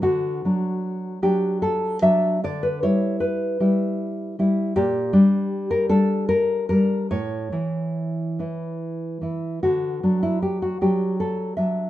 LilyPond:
\new Staff \with { instrumentName = "Nylon-string guitar" } { \time 3/4 \key d \major \tempo 4 = 76 << { fis'4. g'8 a'8 e''8 | d''16 b'16 cis''8 b'4. r8 | g'4~ g'16 bes'16 a'8 bes'8 bes'8 | cis''2 r4 |
fis'8. e'16 g'16 fis'16 g'8 a'8 e''8 | } \\ { d8 <fis d'>4 <fis d'>4 <fis d'>8 | d8 <g e'>4 <g e'>4 <g e'>8 | bes,8 <g d'>4 <g d'>4 <g d'>8 | a,8 <e e'>4 <e e'>4 <e e'>8 |
d8 <fis d'>4 <fis d'>4 <fis d'>8 | } >> }